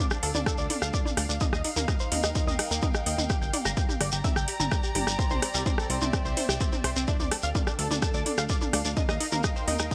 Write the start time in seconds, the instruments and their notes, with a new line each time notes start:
Already playing: string section C4 D4 G4 A4 D5
0.10 synth arpeggio sound D4 D5, string section F5, cross-stick, shekere
0.23 analog synth bass D2, synth arpeggio sound A4 A5, open hi-hat
0.35 analog synth bass D2, synth arpeggio sound D4 D5, mid tom, shekere
0.46 synth arpeggio sound A4 A5, kick, cross-stick, shekere
0.58 analog synth bass D2, synth arpeggio sound D5 D6, shekere
0.70 synth arpeggio sound D4 D5, open hi-hat, mid tom
0.82 analog synth bass D2, synth arpeggio sound F5 F6, cross-stick, shekere
0.94 synth arpeggio sound D5 D6, kick, shekere
1.05 synth arpeggio sound D4 D5, mid tom, shekere
1.17 analog synth bass D2, synth arpeggio sound D4 D5, cross-stick, open hi-hat
1.29 analog synth bass D2, synth arpeggio sound D4 D5, shekere
1.40 string section D#4, synth arpeggio sound D#5 D#6, kick, mid tom, shekere
1.53 analog synth bass D#2, synth arpeggio sound D#5 D#6, cross-stick, shekere
1.64 synth arpeggio sound D#4 D#5, open hi-hat
1.76 analog synth bass D#2, synth arpeggio sound A#3 A#4, mid tom, shekere
1.87 string section A#4, synth arpeggio sound D#5 D#6, kick, cross-stick, shekere
2.00 synth arpeggio sound C5 C6, shekere
2.12 analog synth bass D#2, synth arpeggio sound D#4 D#5, open hi-hat, mid tom
2.23 analog synth bass D#2, synth arpeggio sound D#4 D#5, string section G5, cross-stick, shekere
2.35 synth arpeggio sound D#4 D#5, kick, shekere
2.47 analog synth bass D#2, synth arpeggio sound D#5 D#6, mid tom, shekere
2.59 synth arpeggio sound D#4 D#5, cross-stick, open hi-hat
2.71 analog synth bass D#2, synth arpeggio sound A#3 A#4, shekere
2.82 synth arpeggio sound D#5 D#6, kick, mid tom, shekere
2.94 synth arpeggio sound D#4 D#5, cross-stick, shekere
3.06 analog synth bass D#2, synth arpeggio sound D#4 D#5, open hi-hat
3.18 analog synth bass D#2, synth arpeggio sound D#4 D#5, mid tom, shekere
3.30 synth arpeggio sound G4 G5, string section G4, kick, cross-stick, shekere
3.42 analog synth bass G1, synth arpeggio sound G5 G6, shekere
3.53 synth arpeggio sound D5 D6, open hi-hat, mid tom
3.65 analog synth bass G1, synth arpeggio sound A#5 A#6, cross-stick, shekere
3.77 synth arpeggio sound G5 G6, kick, shekere
3.89 synth arpeggio sound G4 G5, mid tom, shekere
4.01 analog synth bass G1, synth arpeggio sound D5 D6, cross-stick, open hi-hat
4.12 analog synth bass G1, synth arpeggio sound G4 G5, string section D5 A#5, shekere
4.24 synth arpeggio sound E5 E6, kick, mid tom, shekere
4.36 analog synth bass G1, synth arpeggio sound G5 G6, cross-stick, shekere
4.48 synth arpeggio sound G4 G5, open hi-hat
4.60 analog synth bass G1, synth arpeggio sound A#5 A#6, mid tom, shekere
4.71 synth arpeggio sound G5 G6, kick, cross-stick, shekere
4.83 synth arpeggio sound G4 G5, shekere
4.95 analog synth bass G1, synth arpeggio sound G4 G5, open hi-hat, mid tom
5.07 analog synth bass G1, synth arpeggio sound G4 G5, cross-stick, shekere
5.19 string section C4, synth arpeggio sound C5 C6, kick, shekere
5.30 analog synth bass C2, synth arpeggio sound C5 C6, mid tom, shekere
5.42 synth arpeggio sound C4 C5, cross-stick, open hi-hat
5.54 analog synth bass C2, synth arpeggio sound G3 G4, shekere
5.66 synth arpeggio sound C5 C6, kick, mid tom, shekere
5.78 synth arpeggio sound A4 A5, cross-stick, shekere
5.90 analog synth bass C2, synth arpeggio sound C4 C5, open hi-hat
6.01 analog synth bass C2, synth arpeggio sound C4 C5, string section E5, mid tom, shekere
6.13 synth arpeggio sound C4 C5, kick, cross-stick, shekere
6.25 analog synth bass C2, synth arpeggio sound C5 C6, shekere
6.37 synth arpeggio sound C5 C6, open hi-hat, mid tom
6.49 analog synth bass C2, synth arpeggio sound G4 G5, cross-stick, shekere
6.61 synth arpeggio sound C4 C5, kick, shekere
6.73 synth arpeggio sound C4 C5, mid tom, shekere
6.84 analog synth bass C2, synth arpeggio sound C5 C6, cross-stick, open hi-hat
6.96 analog synth bass C2, synth arpeggio sound C4 C5, shekere
7.08 synth arpeggio sound D4 D5, string section D4, kick, shekere
7.20 analog synth bass D2, synth arpeggio sound D5 D6, mid tom, shekere
7.31 synth arpeggio sound A4 A5, cross-stick, open hi-hat
7.42 analog synth bass D2, string section A4, synth arpeggio sound F5 F6, shekere
7.55 synth arpeggio sound D5 D6, kick, mid tom, shekere
7.67 synth arpeggio sound D4 D5, cross-stick, shekere
7.79 analog synth bass D2, synth arpeggio sound A4 A5, open hi-hat
7.91 analog synth bass D2, synth arpeggio sound D4 D5, string section F5, mid tom, shekere
8.02 synth arpeggio sound A4 A5, kick, cross-stick, shekere
8.14 analog synth bass D2, synth arpeggio sound D5 D6, shekere
8.26 synth arpeggio sound D4 D5, open hi-hat, mid tom
8.38 analog synth bass D2, synth arpeggio sound F5 F6, cross-stick, shekere
8.49 synth arpeggio sound D5 D6, kick, shekere
8.61 synth arpeggio sound D4 D5, mid tom, shekere
8.73 analog synth bass D2, synth arpeggio sound D4 D5, cross-stick, open hi-hat
8.85 analog synth bass D2, synth arpeggio sound D4 D5, shekere
8.97 string section D#4, synth arpeggio sound D#5 D#6, kick, mid tom, shekere
9.09 analog synth bass D#2, string section A#4, synth arpeggio sound D#5 D#6, cross-stick, shekere
9.20 synth arpeggio sound D#4 D#5, open hi-hat
9.32 analog synth bass D#2, synth arpeggio sound A#3 A#4, mid tom, shekere
9.41 synth arpeggio sound D#5 D#6, string section G5, kick, cross-stick, shekere
9.56 synth arpeggio sound C5 C6, shekere
9.68 analog synth bass D#2, synth arpeggio sound D#4 D#5, open hi-hat, mid tom
9.79 analog synth bass D#2, synth arpeggio sound D#4 D#5, cross-stick, shekere
9.91 synth arpeggio sound D#4 D#5, kick